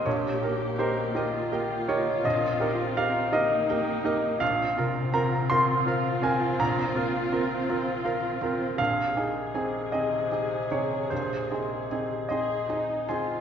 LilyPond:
<<
  \new Staff \with { instrumentName = "Harp" } { \time 6/8 \key aes \major \tempo 4. = 55 <bes, bes'>8 ees'8 bes'8 ees''8 g''8 ees''8 | bes,8 ees'8 bes'8 ees''8 g''8 ees''8 | bes,8 c8 bes'8 c'''8 f''4 | bes,8 bes8 bes'4 f''4 |
bes,8 ees'8 aes'4 ees''4 | bes,8 c'8 aes'8 c''8 ees''8 c''8 | }
  \new Staff \with { instrumentName = "Grand piano" } { \time 6/8 \key aes \major << { des''4 c''8 r4 des''8 | ees''4 f''8 ees''4 r8 | f''4 bes''8 c'''4 aes''8 | bes''2. |
f''4. ees''4 des''8 | c''4. ees''4 aes''8 | } \\ { bes,,8 <g' bes'>8 <ees' g' bes'>8 <ees' g' bes'>8 <g' bes'>8 <ees' g' bes'>8 | bes,,8 <g' bes'>8 <ees' g' bes'>8 <ees' g' bes'>8 <g' bes'>8 <ees' g' bes'>8 | bes,,8 <f' bes'>8 <c' f' bes'>8 <c' f' bes'>8 <f' bes'>8 <c' f' bes'>8 | bes,,8 <f' bes'>8 <c' f' bes'>8 <c' f' bes'>8 <f' bes'>8 <c' f' bes'>8 |
bes,,8 <ees' aes'>8 <c' ees' aes'>8 <c' ees' aes'>8 <ees' aes'>8 <c ees' aes'>8 | bes,,8 <ees' aes'>8 <c' ees' aes'>8 <c' ees' aes'>8 <ees' aes'>8 <c' ees' aes'>8 | } >> }
  \new Staff \with { instrumentName = "Viola section" } { \time 6/8 \key aes \major << { g'4. f'4.~ | f'4. ees'4. | f'2.~ | f'2. |
aes'2.~ | aes'4. aes'8 ees'8 f'8 | } \\ { bes2. | c'4. bes4. | c'2.~ | c'2. |
c2.~ | c4. r4. | } >> }
>>